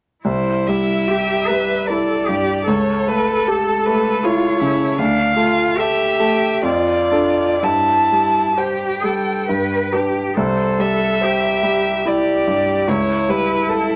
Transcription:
0.25 C2 E4 C5
0.67 G3 E5
1.08 G4
1.48 G3 B4
1.87 E4 A4 D5
2.28 G2 G4
2.67 C#2 A4 C#5
3.07 A3 B4
3.47 G4 A4
3.86 A3 B4
4.23 E4 F4 C#5
4.60 C#3 E4
4.98 D2 D4 F5
5.36 A3 F4
5.77 G4 A4 E5
6.20 A3
6.63 F2 F4 D5
7.12 D4 A4
7.62 G2 E4 A5
8.12 G3
8.57 G4 C5 G5
9.03 G3 A4
9.49 G2 B4
9.94 D4 G4 B4
10.37 C2 A4 C5
10.79 G3 E5
11.21 G4 C5
11.63 G3
12.06 E4 G4 D5
12.47 G2
12.88 C#2 E4 C#5
13.29 G3 B4
13.69 A4

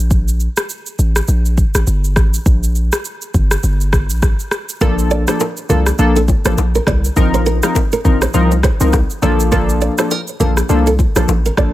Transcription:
Already playing: A#1
0.11 kick, shaker
0.28 shaker
0.40 shaker
0.57 cross-stick, shaker
0.70 shaker
0.86 shaker
0.99 A1, shaker
1.16 cross-stick, shaker
1.28 A#1, shaker
1.45 shaker
1.58 kick, shaker
1.75 A1, cross-stick, shaker
1.87 G1, shaker
2.04 shaker
2.16 A1, kick, cross-stick, shaker
2.34 shaker
2.46 A#1, kick, shaker
2.63 shaker
2.75 shaker
2.92 cross-stick, shaker
3.05 shaker
3.22 shaker
3.34 G1, kick, shaker
3.51 cross-stick, shaker
3.63 G1, shaker
3.81 shaker
3.93 kick, cross-stick, shaker
4.10 A#1, shaker
4.22 kick, cross-stick, shaker
4.40 shaker
4.51 cross-stick, shaker
4.69 shaker
4.81 A#1 F3 A#3 D4 A4 A#4, kick, low conga, shaker
4.99 shaker
5.11 D5, shaker
5.27 F3 A#3 D4 A4 C5, cross-stick, low bongo, shaker
5.40 A#4, high bongo, shaker
5.57 shaker
5.69 C2 F3 A#3 D4 A4 A#4, low conga, shaker
5.86 cross-stick, shaker
5.99 A#1 F3 A#3 D4 A4, shaker
6.16 A4, low bongo, shaker
6.28 kick, low bongo, shaker
6.45 A1 F3 A#3 D4 A4 C5, cross-stick, high bongo, shaker
6.58 A#1, high bongo, shaker
6.75 A#4, shaker
6.87 C2 D5, kick, cross-stick, low conga, shaker
7.05 shaker
7.16 A#1 F3 C4 D#4 A#4, kick, low conga, shaker
7.34 C5, shaker
7.46 A#4, shaker
7.63 F3 C4 D#4 A#4, cross-stick, low bongo, shaker
7.75 kick, high bongo, shaker
7.92 A#4, shaker
8.04 A#1 F3 C4 D#4 A#4, kick, low conga, shaker
8.22 C5, cross-stick, shaker
8.34 C2 F3 C4 D#4 A#4, shaker
8.51 low bongo, shaker
8.63 C5, kick, cross-stick, low bongo, shaker
8.80 C2 F3 C4 D#4 A#4, high bongo, shaker
8.93 kick, cross-stick, high bongo, shaker
9.10 shaker
9.22 A#1 F3 A#3 D4 A4 D5, low conga, shaker
9.40 shaker
9.52 F3 A#3 D4 A4 A#4, kick, low conga, shaker
9.69 shaker
9.81 D5, shaker
9.98 F3 A#3 D4 A4 C5, cross-stick, low bongo, shaker
10.11 A#4, high bongo, shaker
10.28 shaker
10.40 A#1 F3 A#3 D4 A4 A#4, low conga, shaker
10.57 cross-stick, shaker
10.69 C2 F3 A#3 D4 A4, shaker
10.87 A4, low bongo, shaker
10.99 kick, low bongo, shaker
11.16 A#1 F3 A#3 D4 A4 C5, cross-stick, high bongo, shaker
11.28 A1, high bongo, shaker
11.46 A#4, shaker
11.57 A#1 F3 A#3 D4 A4 D5, kick, cross-stick, low conga, shaker

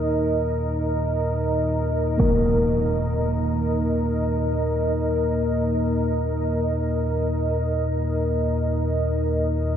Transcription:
Already playing: D#2 A#2 D#4 A#4 D#5
2.18 A#3 A#4, impact

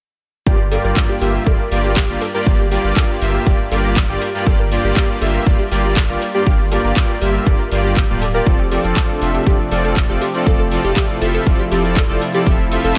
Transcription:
0.47 G1 G2 A#3 F4 G4 D5, kick
0.72 G2 A#3 F4 G4 A4 D5, open hi-hat
0.84 G1 G2 A#3 F4 G4 A#4 D5
0.97 G2 A#3 F4 G4 D5, kick, clap
1.09 G4
1.22 G1 G2 A#3 F4 G4 E5, open hi-hat
1.47 F1 G2 A#3 F4 G4 A4 D5, kick
1.59 A#4
1.72 G1 G2 A#3 F4 G4 D5, open hi-hat
1.84 G2 A#3 F4 G4 D5
1.97 G4, kick, clap
2.09 G1 G2 A#3 F4 G4 D5
2.22 A4, open hi-hat
2.34 G2 A#3 F4 G4 A#4 D5
2.47 G1 G2 A#3 F4 G4 D5, kick
2.60 G4
2.72 G2 A#3 F4 G4 D5, open hi-hat
2.84 G1 G2 A#3 F4 G4 D5
2.97 G2 A#3 F4 G4 A4 D5, kick, clap
3.09 A#4
3.22 G1 G2 A#3 F4 G4 E5, open hi-hat
3.34 G4
3.47 F1 G2 A#3 F4 G4 D5, kick, open hi-hat
3.72 G1 G2 A#3 F4 G4 A4 D5, open hi-hat
3.84 G2 A#3 F4 G4 A#4 D5
3.97 kick, clap
4.09 G1 G2 A#3 F4 G4 D5
4.22 G4, open hi-hat
4.34 G2 A#3 F4 G4 D5
4.47 G1 G2 A#3 F4 G4 A4 D5, kick
4.59 A#4
4.72 G2 A#3 F4 G4 D5, open hi-hat
4.84 G1 G2 A#3 F4 G4 D5
4.97 G2 A#3 F4 G4 D5, kick, clap
5.22 G1 G2 A#3 F4 G4 A4 E5, open hi-hat
5.34 A#4
5.47 F1 G2 A#3 F4 G4 D5, kick
5.59 G4
5.72 G1 G2 A#3 F4 G4 D5, open hi-hat
5.84 G2 A#3 F4 G4 D5
5.97 A4, kick, clap
6.09 G1 G2 A#3 F4 G4 A#4 D5
6.22 open hi-hat
6.34 G2 A#3 F4 G4 D5
6.47 G1 G2 A#3 F4 G4 D5, kick
6.72 G2 A#3 F4 G4 A4 D5, open hi-hat
6.84 G1 G2 A#3 F4 G4 A#4 D5
6.97 G2 A#3 F4 G4 D5, kick, clap
7.09 G4
7.22 G1 G2 A#3 F4 G4 E5, open hi-hat
7.47 F1 G2 A#3 F4 G4 A4 D5, kick, open hi-hat
7.59 A#4
7.72 G1 G2 A#3 F4 G4 D5, open hi-hat
7.84 G2 A#3 F4 G4 D5
7.97 G4, kick, clap
8.09 D1 G2 A#3 F4 G4 D5
8.22 A4, open hi-hat
8.34 A#3 F4 G4 A#4 D5
8.46 F1 C3 F3 A3 C4 D4 F4 A4 D5, kick, closed hi-hat
8.60 G4
8.72 F3 C4 F4 G4 A4 D5, open hi-hat
8.84 F1 F3 C4 F4 A4 D5, closed hi-hat
8.97 F3 C4 F4 A4 D5, kick, clap, closed hi-hat
9.10 A4
9.22 F1 F3 C4 F4 A4 E5, open hi-hat
9.34 G4, closed hi-hat
9.47 F1 F3 C4 F4 G4 A4 D5, kick, closed hi-hat
9.72 F1 F3 C4 F4 A4 D5, open hi-hat
9.84 F3 C4 F4 A4 D5, closed hi-hat
9.97 kick, clap, closed hi-hat
10.09 F1 F3 C4 F4 G4 A4 D5
10.22 G4, open hi-hat
10.34 F3 C4 F4 A4 D5, closed hi-hat
10.47 F1 F3 C4 E4 F4 A4 D5, kick, closed hi-hat
10.60 A4
10.72 F3 C4 F4 A4 D5, open hi-hat
10.84 F1 F3 C4 F4 G4 A4 D5, closed hi-hat
10.97 F3 C4 F4 G4 A4 D5, kick, clap, closed hi-hat
11.22 F1 F3 C4 F4 A4 E5, open hi-hat
11.34 A4, closed hi-hat
11.47 F1 F3 C4 F4 A4 D5, kick, open hi-hat
11.59 G4
11.72 F1 F3 C4 F4 G4 A4 D5, open hi-hat
11.84 F3 C4 F4 A4 D5, closed hi-hat
11.97 A4, kick, clap, closed hi-hat
12.09 F1 F3 C4 F4 A4 D5
12.22 open hi-hat
12.34 F3 C4 F4 G4 A4 D5, closed hi-hat
12.47 F1 C3 F3 A3 C4 F4 G4 A4 E5, kick, closed hi-hat
12.72 F3 C4 F4 A4 E5, open hi-hat
12.84 F1 F3 C4 F4 A4 E5, closed hi-hat

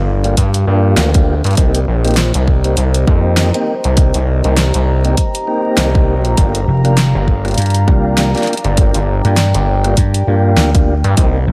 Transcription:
Already playing: G1 G4 D5 F5 A#5
0.24 A#3 D4 F4 G4, closed hi-hat
0.37 G2, kick, closed hi-hat
0.54 closed hi-hat
0.67 G2 A#3 D4 F4 G4
0.97 D2, snare, closed hi-hat
1.14 A#3 D4 F4 G4, kick, closed hi-hat
1.44 G2, closed hi-hat
1.46 closed hi-hat
1.51 closed hi-hat
1.53 closed hi-hat
1.55 closed hi-hat
1.57 C2 A#3 C4 D#4 G4 C5 D#5, kick, closed hi-hat
1.75 closed hi-hat
1.88 A#1
2.04 A#3 C4 D#4 G4, closed hi-hat
2.08 closed hi-hat
2.11 closed hi-hat
2.14 snare, closed hi-hat
2.17 closed hi-hat
2.34 C2, closed hi-hat
2.48 kick
2.64 A#3 C4 D#4 G4, closed hi-hat
2.77 C2, closed hi-hat
2.94 closed hi-hat
3.07 F2 A#3 C4 D#4 G4, kick
3.37 snare, closed hi-hat
3.54 A#3 C4 D#4 G4, closed hi-hat
3.84 C2, closed hi-hat
3.97 A#3 C4 D#4 G4, kick, closed hi-hat
4.14 C2, closed hi-hat
4.44 C2 A#3 C4 D#4 G4, closed hi-hat
4.57 snare, closed hi-hat
4.74 C2, closed hi-hat
5.05 A#3 C4 D#4 G4, closed hi-hat
5.17 kick, closed hi-hat
5.35 closed hi-hat
5.47 A#3 C4 D#4 G4
5.77 C2, snare, closed hi-hat
5.95 A#3 C4 D#4 G4, kick
6.19 B1
6.25 closed hi-hat
6.37 G1 A#3 D4 F4 G4 D5 F5, kick, closed hi-hat
6.55 closed hi-hat
6.68 F1
6.85 A#3 D4 F4 G4, cross-stick, closed hi-hat
6.97 snare, closed hi-hat
7.15 G1
7.28 kick
7.45 A#3 D4 F4 G4, cross-stick, closed hi-hat
7.48 closed hi-hat
7.51 closed hi-hat
7.54 closed hi-hat
7.58 G2, closed hi-hat
7.62 closed hi-hat
7.66 closed hi-hat
7.70 closed hi-hat
7.74 closed hi-hat
7.87 C2 A#3 D4 F4 G4, kick, cross-stick
8.17 snare, closed hi-hat
8.35 A#3 D4 F4 G4, snare, closed hi-hat
8.37 snare, closed hi-hat
8.41 snare
8.43 snare, closed hi-hat
8.45 snare, closed hi-hat
8.53 closed hi-hat
8.57 closed hi-hat
8.64 G1, closed hi-hat
8.77 A#3 D4 F4 G4 G5, kick, closed hi-hat
8.94 G1, closed hi-hat
9.25 G2 A#3 D4 F4 G4, cross-stick, closed hi-hat
9.37 snare, closed hi-hat
9.54 G1, closed hi-hat
9.84 A#3 D4 F4 G4, cross-stick, closed hi-hat
9.97 G2, kick, closed hi-hat
10.14 closed hi-hat
10.27 G2 A#3 D4 F4 G4
10.57 D2, snare
10.75 A#3 D4 F4 G4, kick, closed hi-hat
11.04 G2, closed hi-hat
11.17 C2 A#3 C4 D#4 G4 C5 D#5 A#5, kick, closed hi-hat
11.47 A#1

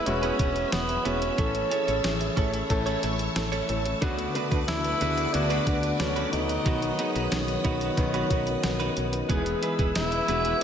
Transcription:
Already playing: G#3 B3 E4 B4 C#5 E5 G#5 E6
0.06 E1 G#3 B3 C#4 E4 F#4, muted clean electric guitar stroke, closed hi-hat
0.22 B3 E4 G#4 B4, closed hi-hat
0.39 E1 G#3 B3 E4 G#4 B4, kick, closed hi-hat
0.56 muted clean electric guitar stroke, closed hi-hat
0.72 E1 G#3 B3 E4 B4, snare, closed hi-hat
0.89 muted clean electric guitar stroke, closed hi-hat
1.05 E1 G#3 B3 C#4 E4 F#4 G#4 B4, closed hi-hat
1.21 muted clean electric guitar stroke, closed hi-hat
1.38 A1 E3 A3 C#4 E4 A4 C#5 A5, kick, closed hi-hat
1.55 closed hi-hat
1.71 E3 A3 C#4 E4 G#4 A4 C#5, closed hi-hat
1.87 A1 C#4 E4 A4 C#5, closed hi-hat
2.03 A1 E3 A3 C#4 G#4, muted clean electric guitar stroke, snare, closed hi-hat
2.20 muted clean electric guitar stroke, closed hi-hat
2.36 A1 E3 A3 C#4 E4 A4 C#5, kick, closed hi-hat
2.53 C#4 E4 A4 C#5, closed hi-hat
2.70 A1 E3 A3 C#4 A4, muted clean electric guitar stroke, kick, closed hi-hat
2.86 C#4 E4 A4 C#5, closed hi-hat
3.02 A1 E3 A3 C#4 E4 A4 C#5, closed hi-hat
3.19 muted clean electric guitar stroke, closed hi-hat
3.36 A1 E3 A3 C#4 A4, muted clean electric guitar stroke, snare, closed hi-hat
3.52 C#4 E4 A4 C#5, closed hi-hat
3.69 A1 E3 A3 C#4 A4, muted clean electric guitar stroke, closed hi-hat
3.85 muted clean electric guitar stroke, closed hi-hat
4.01 D2 D3 A3 B3 D4 F#4 B4 F#5 D6, kick, closed hi-hat
4.19 closed hi-hat
4.34 D3 A3 B3 D4 F#4 B4, closed hi-hat
4.51 D2 A3 D4 F#4 B4, kick, closed hi-hat
4.67 D2 D3 A3 B3 D4 E4, muted clean electric guitar stroke, snare, closed hi-hat
4.84 muted clean electric guitar stroke, closed hi-hat
5.00 D2 D3 A3 B3 D4 F#4 G#4 B4, closed hi-hat
5.17 A3 D4 F#4 B4, closed hi-hat
5.33 D2 D3 A3 B3 D4 F#4, muted clean electric guitar stroke, closed hi-hat
5.50 A3 D4 F#4 B4, closed hi-hat
5.66 D2 D3 A3 B3 D4 F#4 B4, kick, closed hi-hat
5.83 muted clean electric guitar stroke, closed hi-hat
5.99 D2 D3 A3 B3 C#4 F#4, muted clean electric guitar stroke, snare, closed hi-hat
6.16 A3 D4 F#4 B4, closed hi-hat
6.32 D2 D3 A3 B3 D#4 F#4, muted clean electric guitar stroke, closed hi-hat
6.49 muted clean electric guitar stroke, closed hi-hat
6.65 B1 D#3 F#3 B3 D#4 F#4 B4 D#5 D#6, kick, closed hi-hat
6.82 closed hi-hat
6.98 D#3 F#3 B3 D#4 F#4 G#4 B4, closed hi-hat
7.15 B1 B3 D#4 F#4 B4, closed hi-hat
7.31 B1 D#3 F#3 B3 C#4, snare, closed hi-hat
7.48 muted clean electric guitar stroke, closed hi-hat
7.64 B1 D#3 F#3 B3 D#4 F#4 B4, kick, closed hi-hat
7.81 B3 D#4 F#4 B4, closed hi-hat
7.97 B1 D#3 F#3 B3 C#4, muted clean electric guitar stroke, kick, closed hi-hat
8.14 B3 D#4 F#4 B4, closed hi-hat
8.30 B1 D#3 F#3 B3 D#4 F#4 B4, kick, closed hi-hat
8.47 muted clean electric guitar stroke, closed hi-hat
8.63 B1 A4 F#5, muted clean electric guitar stroke, snare, closed hi-hat
8.80 B3 D#4 F#4 B4 D#5, closed hi-hat
8.96 B1 C#5, muted clean electric guitar stroke, closed hi-hat
9.13 D#4 B4, muted clean electric guitar stroke, closed hi-hat
9.29 E1 E3 G#3 B3 E4 G#4 B4 E5 G#5 E6, kick, closed hi-hat
9.46 closed hi-hat
9.62 E3 G#3 B3 E4 G#4 B4, closed hi-hat
9.79 E1 B3 E4 G#4 B4, kick, closed hi-hat
9.95 E1 E3 G#3 B3 E4 G#4, muted clean electric guitar stroke, snare, closed hi-hat
10.12 muted clean electric guitar stroke, closed hi-hat
10.28 E1 E3 G#3 B3 E4 F#4 G#4 B4, closed hi-hat
10.44 B3 E4 G#4 B4, closed hi-hat

